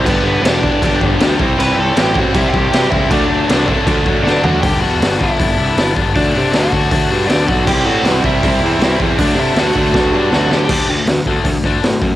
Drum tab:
CC |x-x-x-x-|x-x-x-x-|x-x-x---|--------|
HH |--------|--------|--------|o-o-o-o-|
SD |--o---o-|--o---o-|--o---o-|--o---o-|
FT |--------|--------|-------o|--------|
BD |o--ooo-o|---ooo-o|o--ooo--|o--oo--o|

CC |--------|x-------|--------|x-------|
HH |o-o-o-o-|--o-o-o-|o-o-----|--o-o-o-|
SD |--o---o-|--o---o-|--o-o-oo|--o---o-|
FT |--------|--------|--------|--------|
BD |o--oo--o|o--oo--o|o--oo---|o--ooo-o|